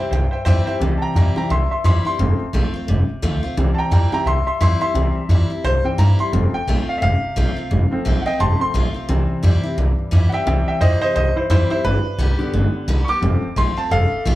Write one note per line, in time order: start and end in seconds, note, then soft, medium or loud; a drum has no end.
0.00 0.12 C4 soft
0.00 0.11 E4 medium
0.11 0.25 C2 medium
0.11 0.79 G2 medium
0.11 0.24 C5 medium
0.11 0.24 E5 medium
0.11 0.25 G5 loud
0.31 0.40 C5 medium
0.31 0.41 E5 medium
0.31 0.41 G5 loud
0.31 muted upright bass stroke medium
0.45 0.60 F2 medium
0.45 0.66 E3 medium
0.45 0.66 G3 loud
0.45 0.67 C4 loud
0.45 0.66 E4 medium
0.45 0.58 C5 loud
0.45 0.59 E5 loud
0.45 0.59 G5 loud
0.66 0.81 C4 soft
0.66 0.80 E4 medium
0.66 0.75 C5 medium
0.66 0.75 E5 medium
0.66 0.76 G5 medium
0.66 muted upright bass stroke medium
0.80 0.95 C2 loud
0.80 1.48 C3 medium
0.80 1.33 E3 medium
0.80 1.33 G3 medium
0.80 1.33 C4 medium
0.98 1.14 G5 medium
0.98 1.00 A5 medium
0.98 muted upright bass stroke medium
1.02 1.15 A#5 medium
1.15 1.29 F2 medium
1.15 1.36 E3 medium
1.15 1.36 G3 medium
1.15 1.36 C4 medium
1.15 1.35 E4 medium
1.15 1.35 G5 medium
1.15 1.36 A#5 medium
1.36 1.49 E3 soft
1.36 1.49 G3 soft
1.36 1.49 C4 medium
1.36 1.50 C4 soft
1.36 1.49 E4 medium
1.36 1.50 G5 medium
1.36 1.50 A#5 medium
1.36 muted upright bass stroke medium
1.50 1.64 C2 medium
1.50 2.16 G2 medium
1.50 1.70 E5 medium
1.50 1.70 C6 medium
1.71 1.83 E5 medium
1.71 1.84 C6 medium
1.71 muted upright bass stroke medium
1.84 1.98 F2 medium
1.84 2.04 E3 medium
1.84 2.05 G3 loud
1.84 2.05 C4 loud
1.84 2.04 E4 loud
1.84 2.04 E5 medium
1.84 2.05 C6 medium
2.05 2.19 C4 soft
2.05 2.19 E4 medium
2.05 2.73 C6 loud
2.05 muted upright bass stroke medium
2.19 2.33 F1 loud
2.19 2.85 F2 loud
2.19 2.44 F3 medium
2.19 2.44 A3 soft
2.19 2.45 C4 medium
2.40 muted upright bass stroke medium
2.53 2.67 A#1 loud
2.53 2.73 F3 medium
2.53 2.74 A3 medium
2.53 2.74 C4 medium
2.53 2.72 F4 medium
2.74 2.88 C4 medium
2.74 2.87 F4 medium
2.74 muted upright bass stroke medium
2.88 3.02 F1 medium
2.88 3.54 C3 medium
3.09 muted upright bass stroke medium
3.22 3.37 D2 medium
3.22 3.42 F3 medium
3.22 3.43 A3 loud
3.22 3.43 C4 loud
3.22 3.42 F4 loud
3.43 3.57 C4 medium
3.43 3.57 F4 medium
3.43 muted upright bass stroke medium
3.57 3.71 C2 loud
3.57 4.24 C3 medium
3.57 4.11 E3 medium
3.57 4.11 G3 soft
3.57 4.12 C4 medium
3.75 3.91 G5 medium
3.75 3.77 A5 medium
3.75 muted upright bass stroke medium
3.79 3.92 A#5 medium
3.91 4.05 F2 medium
3.91 4.11 E3 medium
3.91 4.12 G3 medium
3.91 4.12 C4 medium
3.91 4.11 E4 medium
3.91 4.11 G5 medium
3.91 4.12 A#5 medium
4.12 4.25 E3 medium
4.12 4.25 G3 soft
4.12 4.25 C4 medium
4.12 4.27 C4 soft
4.12 4.26 E4 medium
4.12 4.26 G5 medium
4.12 4.27 A#5 loud
4.12 muted upright bass stroke medium
4.26 4.40 C2 medium
4.26 4.93 G2 medium
4.26 4.45 E5 medium
4.26 4.46 C6 loud
4.46 4.60 E5 medium
4.46 4.60 C6 medium
4.46 muted upright bass stroke medium
4.61 4.75 F2 medium
4.61 4.80 E3 medium
4.61 4.81 G3 loud
4.61 4.81 C4 loud
4.61 4.80 E4 loud
4.61 4.80 E5 medium
4.61 4.80 C6 loud
4.81 4.95 C4 soft
4.81 4.95 E4 medium
4.81 5.46 E5 medium
4.81 5.48 C6 loud
4.81 muted upright bass stroke medium
4.94 5.09 C2 loud
4.94 5.61 C3 medium
4.94 5.19 E3 medium
4.94 5.20 G3 medium
4.94 5.20 C4 medium
5.15 muted upright bass stroke medium
5.29 5.43 F2 medium
5.29 5.49 E3 medium
5.29 5.50 G3 medium
5.29 5.50 C4 loud
5.29 5.49 E4 medium
5.50 5.64 C4 soft
5.50 5.64 E4 medium
5.50 muted upright bass stroke medium
5.64 5.78 C2 medium
5.64 6.31 G2 medium
5.64 5.84 C5 loud
5.84 5.97 E3 soft
5.84 5.97 G3 soft
5.84 5.97 C4 medium
5.84 5.99 G5 medium
5.84 muted upright bass stroke medium
5.98 6.12 G2 medium
5.98 6.18 E3 medium
5.98 6.19 G3 medium
5.98 6.19 C4 loud
5.98 6.18 E4 loud
5.98 6.19 A#5 loud
6.19 6.33 C4 soft
6.19 6.33 E4 medium
6.19 6.53 C6 medium
6.19 muted upright bass stroke medium
6.32 6.47 F1 medium
6.32 6.99 F2 medium
6.32 6.58 F3 medium
6.32 6.58 A3 medium
6.32 6.58 C4 medium
6.53 6.87 G5 loud
6.53 muted upright bass stroke medium
6.67 6.81 A#1 medium
6.67 7.01 F3 medium
6.67 7.01 A3 medium
6.67 7.01 C4 medium
6.67 7.02 F4 medium
6.88 7.01 F5 medium
6.88 muted upright bass stroke medium
6.98 7.16 F1 medium
6.98 7.68 C3 medium
6.98 7.01 E5 medium
7.02 8.03 F5 loud
7.22 muted upright bass stroke medium
7.36 7.50 A#1 medium
7.36 7.56 F3 medium
7.36 7.56 A3 loud
7.36 7.57 C4 loud
7.36 7.55 F4 loud
7.56 7.71 C4 soft
7.56 7.70 F4 medium
7.56 muted upright bass stroke medium
7.71 7.85 F1 loud
7.71 8.37 F2 medium
7.91 8.12 F3 medium
7.91 8.13 A3 medium
7.91 8.13 C4 medium
7.91 muted upright bass stroke medium
8.05 8.19 A#1 medium
8.05 8.25 F3 medium
8.05 8.25 A3 medium
8.05 8.25 C4 medium
8.05 8.25 F4 loud
8.22 8.39 F4 medium
8.22 8.24 F#5 medium
8.26 8.40 C4 medium
8.26 8.39 D#5 medium
8.26 8.40 G5 medium
8.26 muted upright bass stroke medium
8.40 8.54 F1 medium
8.40 9.06 C3 medium
8.40 8.59 A5 medium
8.40 8.60 C6 loud
8.57 8.73 F3 soft
8.57 8.73 A3 soft
8.57 8.73 C4 medium
8.57 8.59 B5 medium
8.57 muted upright bass stroke medium
8.61 9.61 C6 loud
8.74 8.88 A#1 medium
8.74 8.94 F3 medium
8.74 8.94 A3 loud
8.74 8.95 C4 loud
8.74 8.93 F4 loud
8.94 9.09 C4 soft
8.94 9.08 F4 medium
8.94 muted upright bass stroke medium
9.09 9.23 C2 loud
9.09 9.75 C3 medium
9.09 10.43 E3 medium
9.09 10.43 G3 soft
9.09 10.43 C4 medium
9.29 muted upright bass stroke medium
9.43 9.57 F2 medium
9.43 9.63 E3 medium
9.43 9.63 G3 medium
9.43 9.63 C4 medium
9.43 9.62 E4 loud
9.63 9.78 C4 medium
9.63 9.77 E4 medium
9.63 muted upright bass stroke medium
9.77 9.91 C2 medium
9.77 10.44 G2 medium
9.98 muted upright bass stroke medium
10.11 10.26 F2 medium
10.11 10.31 E3 medium
10.11 10.32 G3 loud
10.11 10.32 C4 loud
10.11 10.31 E4 loud
10.29 10.46 E4 medium
10.29 10.31 F#5 medium
10.29 muted upright bass stroke medium
10.33 10.47 C4 soft
10.33 10.46 E5 medium
10.33 10.46 G5 loud
10.46 10.61 C2 medium
10.46 11.13 C3 medium
10.46 11.80 E3 medium
10.46 11.80 G3 medium
10.46 11.81 C4 medium
10.46 10.66 E5 medium
10.46 10.67 G5 medium
10.67 10.81 E5 medium
10.67 10.81 G5 medium
10.67 muted upright bass stroke medium
10.81 10.95 F2 medium
10.81 11.01 E3 medium
10.81 11.01 G3 medium
10.81 11.01 C4 medium
10.81 11.00 E4 loud
10.81 11.00 C5 medium
10.81 11.01 D#5 loud
11.01 11.16 C4 medium
11.01 11.15 E4 medium
11.01 11.14 C5 loud
11.01 11.15 D#5 loud
11.01 muted upright bass stroke medium
11.16 11.30 C2 medium
11.16 11.82 G2 medium
11.16 11.35 C5 medium
11.16 11.36 D#5 loud
11.36 11.49 E4 medium
11.36 11.49 C5 medium
11.36 muted upright bass stroke medium
11.50 11.64 F2 medium
11.50 11.70 E3 loud
11.50 11.70 G3 loud
11.50 11.70 C4 loud
11.50 11.69 E4 medium
11.50 11.69 E4 loud
11.50 11.70 C5 loud
11.70 11.85 C4 soft
11.70 11.83 E4 medium
11.70 11.84 E4 medium
11.70 11.84 C5 medium
11.70 muted upright bass stroke medium
11.84 11.98 G1 medium
11.84 12.51 G2 medium
11.84 12.85 B4 loud
12.05 muted upright bass stroke medium
12.18 12.32 C2 medium
12.18 12.38 D3 medium
12.18 12.39 G3 medium
12.18 12.39 B3 medium
12.18 12.38 G4 loud
12.38 12.85 D3 medium
12.38 12.85 G3 medium
12.38 12.85 B3 medium
12.38 12.53 B3 soft
12.38 12.53 G4 medium
12.38 muted upright bass stroke medium
12.53 12.67 G1 medium
12.53 12.87 D3 medium
12.73 muted upright bass stroke medium
12.88 13.01 C2 medium
12.88 13.07 D3 loud
12.88 13.08 G3 loud
12.88 13.08 B3 loud
12.88 13.07 G4 loud
13.05 13.22 G4 medium
13.05 13.07 C#6 medium
13.05 muted upright bass stroke medium
13.09 13.22 B3 soft
13.09 13.56 D6 loud
13.21 13.36 F1 loud
13.21 13.88 F2 loud
13.21 13.46 F3 medium
13.21 13.47 A3 medium
13.21 13.47 C4 medium
13.42 muted upright bass stroke medium
13.56 13.70 A#1 medium
13.56 13.76 F3 medium
13.56 13.76 A3 medium
13.56 13.77 C4 medium
13.56 13.76 F4 loud
13.56 13.77 C6 loud
13.77 13.91 C4 medium
13.77 13.90 F4 medium
13.77 13.91 A5 medium
13.77 muted upright bass stroke medium
13.91 14.05 F1 medium
13.91 14.35 C3 medium
13.91 14.23 A4 loud
13.91 14.25 F5 loud
14.12 muted upright bass stroke medium
14.25 14.35 A#1 medium
14.25 14.35 F3 loud
14.25 14.35 A3 loud
14.25 14.35 C4 loud
14.25 14.35 F4 loud